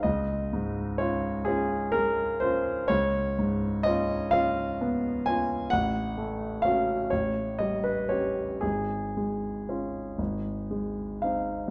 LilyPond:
\new Staff \with { instrumentName = "Grand piano" } { \time 6/8 \key des \major \tempo 4. = 42 << { ees''4 des''8 aes'8 bes'8 c''8 | des''4 ees''8 f''4 aes''8 | ges''4 f''8 cis''8 ees''16 ces''16 cis''8 | aes'2~ aes'8 f''8 | } \\ { des,8 aes,8 <des' f'>8 <des' f'>8 aes8 <des' f'>8 | des,8 aes,8 <des' f'>8 <des' f'>8 ces'8 <des' f'>8 | a,,8 a8 <des' ges'>8 a,,8 g8 <cis' g'>8 | aes,,8 aes8 <des' f'>8 aes,,8 aes8 <c' ees'>8 | } >> }